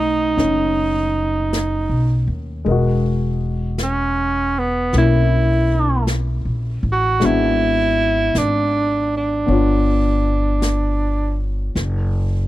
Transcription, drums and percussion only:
0.38 brush sweep soft
0.38 snare soft
1.53 brush sweep soft
1.53 snare soft
1.53 hi-hat pedal soft
2.65 brush sweep soft
3.78 brush sweep soft
3.78 snare soft
3.78 hi-hat pedal soft
4.93 brush sweep soft
4.93 snare soft
6.07 brush sweep soft
6.07 snare soft
6.07 hi-hat pedal soft
7.21 brush sweep soft
7.21 snare soft
8.35 brush sweep soft
8.35 snare soft
8.35 hi-hat pedal soft
9.48 brush sweep soft
10.62 brush sweep soft
10.62 snare soft
10.62 hi-hat pedal soft
11.76 brush sweep soft
11.76 snare soft

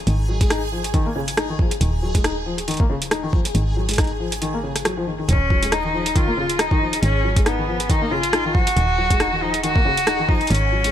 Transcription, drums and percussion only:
0.07 closed hi-hat medium
0.41 kick loud
0.41 closed hi-hat medium
0.50 cross-stick loud
0.50 closed hi-hat soft
0.84 closed hi-hat medium
0.94 kick loud
0.94 closed hi-hat soft
1.28 closed hi-hat medium
1.37 cross-stick loud
1.37 closed hi-hat medium
1.59 kick loud
1.71 closed hi-hat medium
1.81 closed hi-hat medium
2.15 kick medium
2.15 closed hi-hat medium
2.24 cross-stick loud
2.24 closed hi-hat soft
2.58 closed hi-hat medium
2.68 closed hi-hat soft
2.71 closed hi-hat soft
2.74 closed hi-hat soft
2.77 kick loud
2.77 closed hi-hat soft
3.02 closed hi-hat medium
3.11 cross-stick loud
3.11 closed hi-hat medium
3.33 kick medium
3.45 closed hi-hat medium
3.55 closed hi-hat medium
3.89 closed hi-hat medium
3.91 closed hi-hat medium
3.93 closed hi-hat soft
3.96 cross-stick loud
3.96 closed hi-hat soft
3.98 kick loud
3.98 closed hi-hat medium
4.01 closed hi-hat soft
4.04 closed hi-hat soft
4.07 closed hi-hat soft
4.32 closed hi-hat medium
4.42 closed hi-hat soft
4.76 cross-stick medium
4.76 closed hi-hat medium
4.85 cross-stick loud
4.85 closed hi-hat medium
5.29 closed hi-hat medium
5.33 kick medium
5.50 kick loud
5.63 closed hi-hat medium
5.72 cross-stick loud
5.72 closed hi-hat medium
6.06 closed hi-hat medium
6.16 kick loud
6.16 closed hi-hat medium
6.50 closed hi-hat medium
6.59 cross-stick loud
6.59 closed hi-hat medium
6.71 kick loud
6.93 closed hi-hat medium
7.03 closed hi-hat medium
7.37 kick loud
7.37 closed hi-hat medium
7.46 cross-stick loud
7.46 closed hi-hat medium
7.80 closed hi-hat medium
7.90 kick loud
7.90 closed hi-hat medium
8.23 closed hi-hat medium
8.33 cross-stick loud
8.33 closed hi-hat medium
8.55 kick loud
8.67 closed hi-hat medium
8.77 closed hi-hat medium
9.10 kick loud
9.10 closed hi-hat medium
9.20 cross-stick loud
9.20 closed hi-hat medium
9.54 closed hi-hat medium
9.63 closed hi-hat medium
9.76 kick loud
9.97 closed hi-hat medium
10.07 cross-stick loud
10.07 closed hi-hat medium
10.29 kick loud
10.41 closed hi-hat soft
10.47 closed hi-hat soft
10.50 closed hi-hat medium
10.55 closed hi-hat medium
10.84 closed hi-hat medium

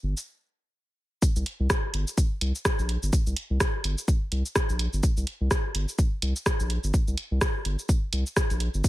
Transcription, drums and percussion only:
0.17 cabasa soft
1.22 kick loud
1.22 cabasa medium
1.36 cabasa soft
1.46 closed hi-hat medium
1.70 kick loud
1.70 cross-stick loud
1.70 cabasa medium
1.94 closed hi-hat loud
2.08 cabasa soft
2.18 kick loud
2.18 cabasa medium
2.41 closed hi-hat loud
2.55 cabasa soft
2.65 kick loud
2.65 cross-stick loud
2.65 cabasa medium
2.79 cabasa soft
2.89 closed hi-hat medium
3.03 cabasa soft
3.13 kick loud
3.13 cabasa medium
3.27 cabasa soft
3.36 closed hi-hat loud
3.60 kick loud
3.60 cross-stick loud
3.60 cabasa medium
3.84 closed hi-hat loud
3.98 cabasa soft
4.08 kick loud
4.08 cabasa medium
4.32 closed hi-hat loud
4.46 cabasa soft
4.56 kick loud
4.56 cross-stick loud
4.56 cabasa medium
4.69 cabasa soft
4.79 closed hi-hat medium
4.93 cabasa soft
5.03 kick loud
5.03 cabasa medium
5.17 cabasa soft
5.27 closed hi-hat loud
5.51 kick loud
5.51 cross-stick medium
5.51 cabasa medium
5.75 closed hi-hat loud
5.88 cabasa soft
5.98 kick loud
5.98 cabasa medium
6.22 closed hi-hat loud
6.36 cabasa soft
6.46 kick loud
6.46 cross-stick loud
6.46 cabasa medium
6.60 cabasa soft
6.70 closed hi-hat medium
6.84 cabasa soft
6.94 kick loud
6.94 cabasa medium
7.08 cabasa soft
7.18 closed hi-hat medium
7.41 kick loud
7.41 cross-stick loud
7.41 cabasa medium
7.65 closed hi-hat loud
7.79 cabasa soft
7.89 kick loud
7.89 cabasa medium
8.13 closed hi-hat loud
8.26 cabasa soft
8.37 kick loud
8.37 cross-stick medium
8.37 cabasa medium
8.50 closed hi-hat soft
8.50 cabasa soft
8.60 closed hi-hat loud
8.74 cabasa soft
8.84 kick loud
8.84 cabasa medium

